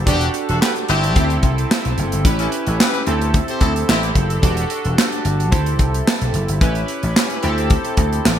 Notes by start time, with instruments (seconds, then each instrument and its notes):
0.06 slap bass E1, horn section B3 D4 G4, analog polysynth D4 F#4 G4 A4, kick, closed hi-hat
0.21 closed hi-hat
0.34 closed hi-hat
0.48 slap bass E1, horn section D4 F#4 A4, closed hi-hat
0.61 horn section B3 G4 B4, snare, clap
0.76 closed hi-hat
0.88 slap bass G1, horn section C4 E4 G4, closed hi-hat
1.04 closed hi-hat
1.15 slap bass D2, analog polysynth C4 E4 G4 A4, kick, closed hi-hat
1.30 closed hi-hat
1.43 slap bass C2, kick, closed hi-hat
1.58 closed hi-hat
1.71 snare, clap
1.85 slap bass B1, closed hi-hat
1.98 slap bass F#1, closed hi-hat
2.12 slap bass G1, closed hi-hat
2.25 slap bass A1, analog polysynth C#4 E4 G4 B4, kick, closed hi-hat
2.39 horn section C#4 E4 A4, closed hi-hat
2.52 closed hi-hat
2.67 slap bass A1, horn section G4 A4 C#5, closed hi-hat
2.79 horn section E4 G4 B4, snare, clap
2.94 closed hi-hat
3.06 slap bass D2, analog polysynth C4 E4 G4 A4, closed hi-hat
3.21 closed hi-hat
3.34 kick, closed hi-hat
3.48 horn section G4 A4 C5, closed hi-hat
3.61 slap bass D2, horn section C4 E4 A4, kick, closed hi-hat
3.76 closed hi-hat
3.88 slap bass A1, horn section C4 E4 G4, snare, clap
4.03 closed hi-hat
4.15 slap bass F#1, kick, closed hi-hat
4.30 closed hi-hat
4.42 slap bass E1, analog polysynth D4 F#4 G4 A4, kick, closed hi-hat
4.57 closed hi-hat
4.70 closed hi-hat
4.85 slap bass E1, closed hi-hat
4.98 snare, clap
5.12 closed hi-hat
5.25 slap bass G1, closed hi-hat
5.40 closed hi-hat
5.51 slap bass D2, analog polysynth C4 E4 G4 A4, kick, closed hi-hat
5.66 closed hi-hat
5.79 slap bass C2, kick, closed hi-hat
5.94 closed hi-hat
6.08 snare, clap
6.21 slap bass B1, closed hi-hat
6.34 slap bass F#1, closed hi-hat
6.48 slap bass G1, closed hi-hat
6.61 slap bass A1, analog polysynth C#4 E4 G4 B4, kick, closed hi-hat
6.75 closed hi-hat
6.88 closed hi-hat
7.03 slap bass A1, closed hi-hat
7.16 snare, clap
7.30 closed hi-hat
7.42 slap bass D2, analog polysynth C4 E4 G4 A4, closed hi-hat
7.58 closed hi-hat
7.70 kick, closed hi-hat
7.84 closed hi-hat
7.97 slap bass D2, kick, closed hi-hat
8.13 closed hi-hat
8.26 slap bass A1, snare, clap